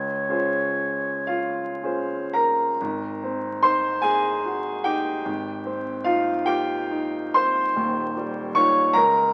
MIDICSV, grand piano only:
0, 0, Header, 1, 2, 480
1, 0, Start_track
1, 0, Tempo, 958466
1, 390, Tempo, 1045296
1, 870, Tempo, 975610
1, 1350, Time_signature, 6, 3, 24, 8
1, 1350, Tempo, 810811
1, 3270, Tempo, 858369
1, 4230, Tempo, 785340
1, 5191, End_track
2, 0, Start_track
2, 0, Title_t, "Grand piano"
2, 0, Program_c, 0, 0
2, 0, Note_on_c, 0, 37, 47
2, 27, Control_c, 0, 64, 127
2, 140, Note_off_c, 0, 37, 0
2, 144, Note_on_c, 0, 61, 40
2, 147, Note_on_c, 0, 65, 38
2, 148, Note_on_c, 0, 68, 38
2, 152, Note_on_c, 0, 72, 43
2, 613, Note_off_c, 0, 65, 0
2, 615, Note_on_c, 0, 77, 73
2, 620, Note_on_c, 0, 65, 52
2, 850, Note_off_c, 0, 61, 0
2, 851, Note_off_c, 0, 68, 0
2, 853, Note_off_c, 0, 72, 0
2, 870, Note_off_c, 0, 65, 0
2, 873, Note_on_c, 0, 61, 36
2, 877, Note_on_c, 0, 68, 34
2, 878, Note_on_c, 0, 65, 35
2, 881, Note_on_c, 0, 72, 41
2, 1120, Note_off_c, 0, 77, 0
2, 1121, Note_on_c, 0, 82, 76
2, 1126, Note_on_c, 0, 70, 58
2, 1332, Note_off_c, 0, 61, 0
2, 1334, Note_off_c, 0, 65, 0
2, 1334, Note_off_c, 0, 68, 0
2, 1336, Note_off_c, 0, 72, 0
2, 1356, Note_on_c, 0, 32, 62
2, 1360, Control_c, 0, 64, 0
2, 1467, Control_c, 0, 64, 127
2, 1608, Note_on_c, 0, 60, 52
2, 1816, Note_off_c, 0, 70, 0
2, 1837, Note_off_c, 0, 82, 0
2, 1839, Note_on_c, 0, 84, 99
2, 1844, Note_on_c, 0, 72, 80
2, 1848, Note_on_c, 0, 63, 50
2, 1988, Note_off_c, 0, 60, 0
2, 2064, Note_off_c, 0, 72, 0
2, 2070, Note_on_c, 0, 80, 94
2, 2078, Note_off_c, 0, 84, 0
2, 2081, Note_on_c, 0, 68, 72
2, 2225, Note_off_c, 0, 63, 0
2, 2329, Note_on_c, 0, 66, 46
2, 2534, Note_off_c, 0, 68, 0
2, 2553, Note_off_c, 0, 80, 0
2, 2559, Note_on_c, 0, 79, 88
2, 2566, Note_on_c, 0, 67, 65
2, 2567, Note_on_c, 0, 63, 51
2, 2707, Note_off_c, 0, 66, 0
2, 2777, Note_off_c, 0, 32, 0
2, 2801, Note_on_c, 0, 32, 59
2, 2802, Note_off_c, 0, 63, 0
2, 2807, Control_c, 0, 64, 0
2, 2919, Control_c, 0, 64, 127
2, 3040, Note_on_c, 0, 60, 48
2, 3251, Note_off_c, 0, 67, 0
2, 3271, Note_off_c, 0, 79, 0
2, 3271, Note_on_c, 0, 77, 88
2, 3275, Note_on_c, 0, 65, 66
2, 3279, Note_on_c, 0, 63, 50
2, 3411, Note_off_c, 0, 60, 0
2, 3489, Note_off_c, 0, 65, 0
2, 3501, Note_on_c, 0, 79, 92
2, 3504, Note_off_c, 0, 77, 0
2, 3508, Note_on_c, 0, 67, 69
2, 3512, Note_on_c, 0, 65, 52
2, 3656, Note_off_c, 0, 63, 0
2, 3756, Note_on_c, 0, 63, 46
2, 3907, Note_off_c, 0, 65, 0
2, 3979, Note_off_c, 0, 67, 0
2, 3997, Note_on_c, 0, 84, 95
2, 3998, Note_off_c, 0, 79, 0
2, 4002, Note_on_c, 0, 72, 77
2, 4005, Note_on_c, 0, 60, 48
2, 4142, Note_off_c, 0, 63, 0
2, 4210, Note_off_c, 0, 32, 0
2, 4230, Note_on_c, 0, 27, 57
2, 4233, Note_off_c, 0, 60, 0
2, 4233, Note_on_c, 0, 39, 64
2, 4239, Control_c, 0, 64, 0
2, 4344, Control_c, 0, 64, 127
2, 4479, Note_on_c, 0, 55, 52
2, 4693, Note_off_c, 0, 72, 0
2, 4712, Note_on_c, 0, 85, 100
2, 4714, Note_off_c, 0, 84, 0
2, 4721, Note_on_c, 0, 73, 77
2, 4722, Note_on_c, 0, 63, 47
2, 4726, Note_on_c, 0, 65, 51
2, 4862, Note_off_c, 0, 55, 0
2, 4933, Note_off_c, 0, 27, 0
2, 4935, Note_off_c, 0, 39, 0
2, 4935, Note_off_c, 0, 63, 0
2, 4937, Note_off_c, 0, 65, 0
2, 4941, Note_off_c, 0, 73, 0
2, 4948, Note_on_c, 0, 82, 103
2, 4954, Note_off_c, 0, 85, 0
2, 4958, Note_on_c, 0, 70, 75
2, 4959, Note_on_c, 0, 37, 66
2, 4966, Control_c, 0, 64, 0
2, 5046, Control_c, 0, 64, 127
2, 5191, Note_off_c, 0, 37, 0
2, 5191, Note_off_c, 0, 70, 0
2, 5191, Note_off_c, 0, 82, 0
2, 5191, End_track
0, 0, End_of_file